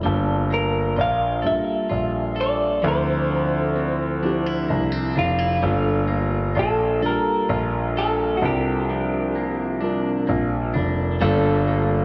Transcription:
0.03 G1 G3 A#3 D4 F4 A5
0.50 A#3 A#4
0.96 A#1 F4
1.01 F5
1.42 A#1 G3 A#3 D4 F4 G4 A4
1.47 E5
1.89 A#1 F4
2.36 A4
2.41 D5
2.82 D2 D3 F3 C4 D4 E4 A4
2.88 C5
3.30 F3
3.76 C4
4.23 F3 C4 D4 E4 G4
4.46 E4
4.69 C2 A#3
4.92 C4
5.15 F1 D4 F4
5.39 E4
5.62 G1 G3 A3 D4 F4 A4
5.70 A#3
6.07 A#3
6.55 A#1 F4
6.59 A4
7.01 A#1 G3 A#3 D4 F4 A4
7.06 A#4
7.10 G4
7.49 A#1 F4
7.97 A4
8.37 G3 F#4
8.42 C2 C3 C4 D4 F4 G4 A#4
8.89 F3
9.35 A#3
9.81 G3 C4 D4 F4 A#4
10.27 A#1 A#3
10.74 F1 D4
11.21 G1 G3 A#3 D4 F4 A4
11.68 A#3

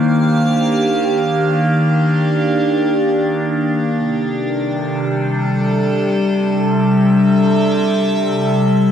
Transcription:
Already playing: D#3 A#3 D4 G4 C5 F5
3.93 C3
4.17 A4
4.24 G3
6.29 E5

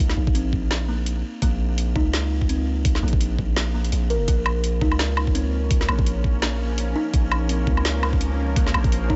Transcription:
Already playing: C#2
0.10 snare
0.17 A#1
0.27 kick
0.35 C4, closed hi-hat
0.53 kick
0.71 snare, closed hi-hat
0.89 A#3
1.06 closed hi-hat
1.42 A#1 A#3, kick, closed hi-hat
1.78 closed hi-hat
1.96 C#2 D#4, kick
2.13 snare, closed hi-hat
2.41 kick
2.49 C4, closed hi-hat
2.85 kick, closed hi-hat
2.95 snare
3.03 A#1 A#3
3.08 closed hi-hat
3.13 kick
3.21 closed hi-hat
3.39 A#1, kick
3.56 A#3, snare, closed hi-hat
3.74 A#3
3.84 closed hi-hat
3.92 A#1, closed hi-hat
4.10 A#4, closed hi-hat
4.28 A#1 F3 A#3, kick, closed hi-hat
4.42 C#4, low woodblock
4.48 A#3
4.54 A#4
4.64 closed hi-hat
4.81 C#2 D#4, kick
4.92 low woodblock
4.99 snare, closed hi-hat
5.17 low woodblock
5.27 kick
5.35 C4, closed hi-hat
5.71 kick, closed hi-hat
5.81 snare
5.88 A#1 A#3, low woodblock
5.99 kick
6.06 closed hi-hat
6.24 kick
6.42 A#3, snare, closed hi-hat
6.78 closed hi-hat
6.96 D#4
7.14 A#1, kick, closed hi-hat
7.32 low woodblock
7.49 C4, closed hi-hat
7.67 C#2, kick
7.77 low woodblock
7.85 snare, closed hi-hat
8.03 A#3, low woodblock
8.13 kick
8.21 closed hi-hat
8.56 A#3, kick, closed hi-hat
8.67 snare
8.74 A#1, low woodblock
8.84 kick, closed hi-hat
8.92 closed hi-hat
9.10 D#4, kick

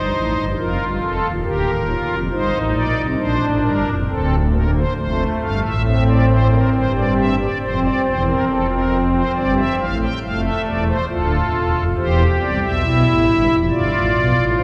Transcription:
Already playing: G1 G2 D#4 C5
0.13 A1 A2
0.36 G1 G2
0.58 F1 F2 F4 A#4
0.79 G1 G2
1.00 F1 F2 A4
1.21 D#1 D#2
1.44 D1 D2 G4 A#4
1.66 D#1 D#2
1.88 F4
2.09 F1 F2
2.31 G1 G2 D#4 C5
2.53 A1 A2
2.74 A#1 A#2 D5
2.96 C2 C3
3.18 A#1 A#2 D4 C5
3.39 A1 A2
3.62 G1 G2 A#4
3.85 F1 F2
4.08 D1 D2 C4 A4
4.52 A#3 A#4
4.75 C5
4.96 F1 F2 A3 C5
5.41 G1 G2 F5
5.63 A1 A2 E5
5.84 C4 E5
6.07 D5
6.29 C5
6.51 A#4
6.73 G1 G2 C5
6.94 D5
7.17 E5
7.40 D5
7.61 F1 F2 C4 C5
7.83 D5
8.05 E1 E2 C5
8.26 A#4
8.48 F1 F2 A4
8.71 A#4
9.14 C5
9.35 G1 G2 D5
9.57 E5
9.79 A1 A2 F5
10.01 G5
10.23 F1 F2 A3 F5
10.43 E5
10.65 E1 E2 D5
10.87 C5
11.08 D1 D2 F4 A4
11.52 E1 E2
11.73 F1 F2
11.96 E1 E2 G4 C5
12.40 C2 C3 D5
12.63 B1 B2 E5
12.84 B1 B2 E4
13.06 A1 A2
13.29 G1 G2
13.50 F1 F2
13.70 G1 G2 F4 D5
13.92 A1 A2
14.14 B1 B2
14.35 A1 A2
14.57 G1 G2 C5

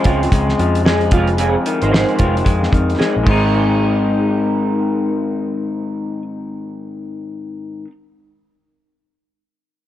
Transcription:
Already playing: C#3 F3 G#3
0.04 C#2 G#3 C4 F4, kick, closed hi-hat
0.23 closed hi-hat
0.32 C#2 G#3, kick, closed hi-hat
0.49 snare
0.59 F2 F3, closed hi-hat
0.75 closed hi-hat
0.85 G#3 C4 G#4, snare
1.01 closed hi-hat
1.11 F1 F2 G#3 F4, kick, closed hi-hat
1.28 closed hi-hat
1.38 F2 C4 G#4, closed hi-hat
1.66 D#3, closed hi-hat
1.82 G#1 D#4 C5, closed hi-hat
1.92 G#3 D#4 C5, snare
2.08 closed hi-hat
2.19 F1 G#3 C4 F4, kick, closed hi-hat
2.37 closed hi-hat
2.45 F2 G#3, kick, closed hi-hat
2.63 snare
2.72 F2 D#3, kick, closed hi-hat
2.90 closed hi-hat
2.99 G#3 C4 G#4, snare
3.16 A#1
3.23 G#1 G#2 D#3 G#3, kick, crash
3.29 C4 D#4

